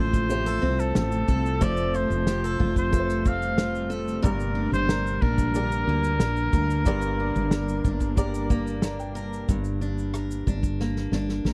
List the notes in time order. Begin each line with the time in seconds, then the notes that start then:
Already playing: A1 C3 F3 A3 C4 F4 A4 C5
0.00 C5
0.13 kick, shaker
0.29 A3 C4 F4 G4 C5, shaker
0.46 A4, snare, shaker
0.62 C2 C4
0.79 A4, shaker
0.95 A1 F4 A4, snare, shaker
1.12 shaker
1.28 C2 A4, kick, shaker
1.46 shaker
1.60 F1 F3 G3 A3 C4 F4 A4 C5 D5, kick, shaker
1.77 shaker
1.94 F4 C5, shaker
2.10 F1, shaker
2.27 G4, snare, shaker
2.44 A4, shaker
2.60 F1 F4, kick
2.76 C5, kick, shaker
2.91 A3 C4 F4 A4 B4, kick, shaker
3.00 C5
3.09 snare, shaker
3.25 C4 F5, kick, shaker
3.42 shaker
3.58 F4, snare, shaker
3.75 shaker
3.90 A4, shaker
4.08 shaker
4.22 G1 G2 D3 A#3 D4 G4 A#4 D5, kick, shaker
4.40 shaker
4.55 D4
4.72 G1 C5, shaker
4.89 A#4, snare, shaker
5.07 shaker
5.21 A#1 D4 A#4, kick
5.38 kick, shaker
5.54 A#3 D4 G4 A#4 D5, shaker
5.72 shaker
5.87 D2 A#3
6.04 shaker
6.20 A#1 D4, snare, shaker
6.36 shaker
6.53 D2 A#4, kick, shaker
6.70 shaker
6.85 G1 G2 A#3 D4 G4 A#4 D5, kick, shaker
7.02 shaker
7.20 D4
7.36 G1, shaker
7.51 A#4, snare, shaker
7.69 shaker
7.85 G1 D4, kick, shaker
8.00 kick, shaker
8.16 A#3 D4 G4 A#4 D5, kick, shaker
8.34 shaker
8.50 A#3, kick, shaker
8.67 shaker
8.82 D4 A#5, snare, shaker
9.00 G5, shaker
9.15 A#4, shaker
9.33 shaker
9.49 G1 G2, kick, shaker
9.64 shaker
9.81 D4, shaker
9.98 shaker
10.14 A#4, cross-stick, shaker
10.31 shaker
10.47 G1 D4, kick, shaker
10.63 kick, shaker
10.80 A#3, snare
10.96 snare
11.12 G1 D4, snare
11.29 snare
11.45 A1 A#4, snare